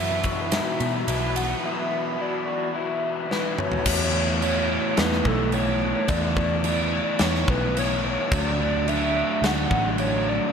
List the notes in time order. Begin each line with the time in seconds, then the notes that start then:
Already playing: F#2 B2 E3 F#3 B3 E4 F#4 E5 B5
0.00 E4
0.24 F#3 B3 E4 F#4, kick, ride
0.50 B2 E3 F#3 B3 E4 E5, snare, ride
0.79 B2 E3, ride
1.06 B1 E3 F#3 B3 E4, ride
1.35 F#3 B3 E4 F#5, ride
1.62 B2 E3 F#3 B3 E4 E5
1.90 F#3 B3 E4
2.17 E3 F#3 B3 E4 D5
2.45 F#3 B3 E4 F#4
2.74 B2 E3 F#3 B3 E4 E5
3.02 E3
3.29 E3 F#3 B3 E4 B4, snare
3.57 F#3 B3 E4 C#5, mid tom
3.72 floor tom
3.84 E2 E3 A3 B3 E4, kick, crash
4.13 A3 B3 E4
4.42 E3 A3 B3 E4, crash
4.69 A3 B3 E4
4.97 E2 E3 A3 B3 E4 B4, snare, crash
5.12 snare
5.25 B1 A3 B3 E4 A4, kick
5.52 E3 A3 B3 E4 C#5, crash
5.81 A3 B3 E4
6.08 E2 E3 A3 B3 E4 D5, kick, crash
6.37 A3 B3 E4, kick
6.64 E3 A3 B3 E4, crash
6.92 A3 B3 E4
7.19 E2 E3 A3 B3 C#5, snare, crash
7.23 E4
7.35 snare
7.48 B1 A3 B3 E4 B4, kick
7.75 E3 A3 B3 E4 C#5, crash
8.03 A3 B3 E4
8.31 D2 D3 F#3 A3 D4 D5, kick, crash
8.59 F#3 A3 D4
8.87 D3 F#3 A3 D4 E5, crash
9.15 F#3 A3 D4
9.42 D2 D3 F#3 A3 F#5, snare, crash
9.46 D4
9.70 A1 F#3 A3 D4, kick
9.98 D3 F#3 A3 D4 C#5, crash
10.26 F#3 A3 D4 D5